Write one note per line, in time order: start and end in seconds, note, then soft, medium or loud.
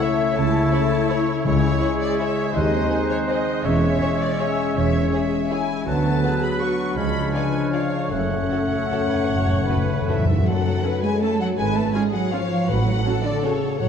0.00 0.35 C#3 medium
0.00 1.29 A3 medium
0.00 1.47 A3 medium
0.00 0.53 C#4 soft
0.00 1.29 E4 medium
0.00 1.42 E4 medium
0.00 0.09 E4 medium
0.00 0.71 A4 medium
0.00 0.18 C#5 soft
0.00 1.42 C#5 medium
0.00 0.09 C#5 soft
0.00 0.36 C#5 medium
0.00 1.09 E5 soft
0.00 0.37 E5 medium
0.00 1.42 E6 medium
0.19 0.91 C#5 soft
0.36 0.67 C#2 medium
0.36 1.45 C#3 medium
0.36 0.67 C#3 medium
0.36 1.82 E4 medium
0.36 0.72 A5 medium
0.54 1.62 C#4 soft
0.72 0.80 E4 medium
0.72 1.47 A4 medium
0.72 0.80 C#5 medium
0.72 1.10 A5 medium
0.92 1.27 C#5 soft
1.10 1.18 E4 soft
1.10 1.18 C#5 medium
1.10 1.44 C#5 medium
1.10 2.18 E5 medium
1.28 2.00 C#5 medium
1.45 1.75 C#2 medium
1.45 1.96 C#3 medium
1.45 1.75 C#3 medium
1.45 2.57 C#3 medium
1.45 3.64 G#3 medium
1.45 3.61 G#3 medium
1.45 2.53 E4 medium
1.45 1.99 C#5 medium
1.45 2.56 C#5 medium
1.45 2.53 E6 medium
1.63 2.57 C#4 soft
1.81 1.89 E4 medium
1.81 2.90 G#4 medium
1.81 2.19 G#4 medium
1.81 1.89 C#5 medium
2.01 2.36 C#5 soft
2.01 2.19 D5 medium
2.19 2.27 E4 soft
2.19 2.55 C#5 medium
2.19 2.27 C#5 soft
2.19 2.56 E5 soft
2.19 2.55 E5 medium
2.54 2.84 D#2 medium
2.54 2.85 D#2 medium
2.54 3.66 D#3 medium
2.54 3.65 C4 medium
2.54 3.66 D#4 medium
2.54 3.65 C5 medium
2.54 3.28 C5 medium
2.54 3.10 D#5 medium
2.54 3.67 F#6 medium
2.73 3.66 C4 soft
2.91 2.99 G#4 soft
2.91 5.88 G#4 medium
2.91 2.99 C5 medium
3.10 3.47 C5 soft
3.10 3.18 C#5 medium
3.29 3.37 G#4 soft
3.29 3.64 C5 medium
3.29 3.37 C5 medium
3.29 3.65 D#5 medium
3.29 3.67 F#5 soft
3.48 3.67 C5 medium
3.65 3.95 E1 medium
3.65 3.95 E2 medium
3.65 4.75 E3 medium
3.65 5.56 G#3 medium
3.65 5.83 G#3 medium
3.65 5.60 C#4 medium
3.65 5.87 C#4 medium
3.65 5.57 C#5 medium
3.65 4.40 C#5 medium
3.65 4.20 E5 medium
3.65 5.60 E6 medium
3.84 4.92 E4 soft
4.02 4.10 G#4 medium
4.02 4.10 C#5 medium
4.02 5.11 C#5 soft
4.21 4.40 D5 medium
4.21 4.57 E5 soft
4.39 4.47 G#4 soft
4.39 4.47 C#5 soft
4.39 4.76 C#5 medium
4.39 4.76 E5 medium
4.39 5.49 G#5 soft
4.75 5.06 E1 medium
4.75 5.06 E2 medium
4.75 5.88 E3 medium
4.75 5.13 C#5 medium
4.75 5.12 E5 medium
4.94 5.88 E4 soft
5.12 5.20 G#4 medium
5.12 5.51 G#4 medium
5.12 5.20 C#5 soft
5.12 5.88 C#5 soft
5.12 5.50 E5 medium
5.32 5.68 E5 soft
5.50 5.87 E4 medium
5.50 5.59 G#4 soft
5.50 5.59 C#5 soft
5.50 5.88 G#5 soft
5.50 5.87 G#5 medium
5.69 5.88 E5 soft
5.86 6.17 D2 medium
5.86 6.98 D3 medium
5.86 6.99 F#3 medium
5.86 6.95 F#3 medium
5.86 6.97 B3 medium
5.86 8.07 D4 medium
5.86 6.23 F#4 medium
5.86 6.99 B4 medium
5.86 6.42 A5 medium
5.86 6.99 F#6 medium
6.04 8.13 B3 soft
6.23 6.31 F#4 soft
6.23 6.61 G#4 medium
6.23 6.31 B4 soft
6.23 6.78 B4 soft
6.43 6.99 F#4 soft
6.43 6.62 B5 medium
6.61 6.69 F#4 soft
6.61 6.97 F#4 soft
6.61 6.69 B4 soft
6.61 6.98 F#5 soft
6.61 6.97 C#6 medium
6.80 8.13 B4 soft
6.97 7.27 C#2 medium
6.97 7.28 C#2 soft
6.97 8.13 C#3 medium
6.97 8.12 F3 medium
6.97 8.11 G#3 medium
6.97 8.09 D4 medium
6.97 7.33 G#4 soft
6.97 8.11 C#5 soft
6.97 7.33 B5 medium
6.97 8.10 F6 soft
7.15 8.13 G#3 soft
7.33 7.41 F4 soft
7.33 7.74 B4 soft
7.33 7.42 D5 soft
7.33 8.13 D5 soft
7.33 7.72 G#5 medium
7.54 7.92 G#4 soft
7.72 7.80 F4 soft
7.72 8.11 C#5 medium
7.72 7.81 D5 soft
7.72 8.11 F5 medium
7.72 8.13 F5 soft
7.93 8.13 G#4 soft
8.11 8.44 F#1 medium
8.11 8.44 F#2 soft
8.11 8.18 F#2 soft
8.11 9.29 F#2 soft
8.11 9.92 A3 medium
8.11 10.24 A3 medium
8.11 9.92 C#4 medium
8.11 10.24 C#4 medium
8.11 8.46 A4 soft
8.11 10.24 C#5 soft
8.11 10.09 F#5 medium
8.11 10.24 F#6 medium
8.26 8.33 F#2 soft
8.31 8.41 F#2 soft
8.31 9.48 A3 soft
8.42 8.49 F#2 soft
8.50 8.58 F#2 soft
8.50 8.58 F#4 soft
8.50 8.58 A4 soft
8.50 9.07 A4 soft
8.50 9.68 C#5 soft
8.59 8.66 F#2 soft
8.67 8.74 F#2 soft
8.71 9.10 A4 soft
8.75 8.82 F#2 soft
8.83 8.90 F#2 soft
8.90 8.98 F#2 soft
8.90 8.99 F#4 soft
8.90 8.98 A4 soft
8.90 10.08 F#5 soft
8.99 9.06 F#2 soft
9.07 9.14 F#2 soft
9.07 9.88 A4 soft
9.07 9.29 B4 soft
9.15 9.21 F#2 soft
9.22 9.28 F#2 soft
9.29 9.62 F#1 medium
9.29 9.62 F#2 soft
9.29 9.35 F#2 soft
9.29 10.45 F#2 soft
9.29 9.68 C#5 medium
9.37 9.44 F#2 soft
9.45 9.52 F#2 soft
9.49 9.60 F#2 medium
9.49 10.63 A3 soft
9.61 9.67 F#2 medium
9.68 9.75 F#2 medium
9.68 9.76 F#4 soft
9.68 9.76 A4 soft
9.68 10.27 B4 medium
9.68 10.82 C#5 soft
9.76 9.84 F#2 medium
9.85 9.92 F#2 medium
9.89 10.27 A4 soft
9.93 10.00 F#2 medium
10.01 10.08 F#2 medium
10.08 10.16 F#2 medium
10.08 10.43 E3 medium
10.08 10.44 E3 medium
10.08 10.16 F#4 soft
10.08 10.16 A4 soft
10.08 10.43 E5 medium
10.08 11.21 F#5 soft
10.17 10.24 F#2 medium
10.25 10.30 F#2 medium
10.25 10.35 A4 soft
10.25 11.01 A4 soft
10.32 10.38 F#2 medium
10.39 10.46 F#2 medium
10.45 11.60 F#2 medium
10.45 10.77 F#2 medium
10.45 11.03 F#3 medium
10.45 11.02 F#3 medium
10.45 10.80 A4 medium
10.45 11.02 F#5 medium
10.64 11.60 A3 soft
10.83 10.91 C#4 soft
10.83 10.91 A4 soft
10.83 11.22 B4 medium
10.83 11.93 C#5 soft
11.02 11.22 G#3 medium
11.02 11.39 A4 soft
11.02 11.21 G#5 medium
11.22 11.40 A3 medium
11.22 11.41 A3 medium
11.22 11.30 C#4 soft
11.22 11.57 A4 medium
11.22 11.30 A4 soft
11.22 11.60 F#5 soft
11.22 11.40 A5 medium
11.40 11.58 F#3 medium
11.40 11.59 A4 soft
11.40 11.47 F#5 medium
11.57 11.88 G#1 medium
11.57 12.70 G#2 medium
11.57 11.75 G#3 medium
11.57 11.76 G#3 medium
11.57 11.94 B4 medium
11.57 11.75 G#5 medium
11.75 11.94 A3 medium
11.75 11.95 A3 medium
11.75 12.70 B3 soft
11.75 11.94 A5 medium
11.94 12.13 G#3 medium
11.94 12.14 G#3 medium
11.94 12.03 C#4 soft
11.94 12.03 F4 soft
11.94 12.33 G#4 medium
11.94 13.04 C#5 medium
11.94 12.01 G#5 medium
12.12 12.32 F#3 medium
12.12 12.50 B4 soft
12.12 12.32 F#5 medium
12.32 12.69 F3 medium
12.32 12.68 F3 medium
12.32 12.41 C#4 medium
12.32 12.41 F4 soft
12.32 12.69 C#5 medium
12.32 12.68 F5 medium
12.32 12.70 F5 soft
12.52 12.70 B4 medium
12.68 12.99 A1 medium
12.68 13.79 A2 medium
12.68 13.21 A2 medium
12.68 13.25 F#3 medium
12.68 13.24 F#3 medium
12.68 13.05 B4 medium
12.68 13.25 F#5 medium
12.87 13.88 A3 soft
13.05 13.14 C#4 soft
13.05 13.14 F#4 soft
13.05 13.78 A4 medium
13.05 13.88 C#5 medium
13.23 13.43 D3 medium
13.23 13.61 A4 soft
13.23 13.43 D5 medium
13.43 13.80 C#3 medium
13.43 13.52 C#4 medium
13.43 13.51 F#4 medium
13.43 13.80 C#5 medium
13.43 13.88 F#5 soft
13.63 13.88 A4 soft
13.79 13.88 A1 medium
13.79 13.88 A2 medium
13.79 13.88 F#3 medium
13.79 13.88 C#5 medium
13.79 13.88 F#5 medium